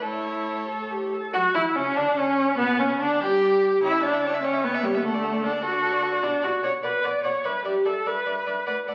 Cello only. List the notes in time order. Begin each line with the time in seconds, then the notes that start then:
0.02 A2
1.34 F#3
1.55 E3
1.76 C#3
1.97 D3
2.16 C#3
2.58 B2
2.78 C#3
2.99 D3
3.21 G3
3.83 C#3
5.03 D3
6.23 B2
6.43 B2
6.64 B2
6.84 B2
7.04 B2
7.24 B2
7.45 G2
7.65 G2
7.84 G2
8.05 G2
8.26 G2
8.46 G2
8.67 A2
8.88 A2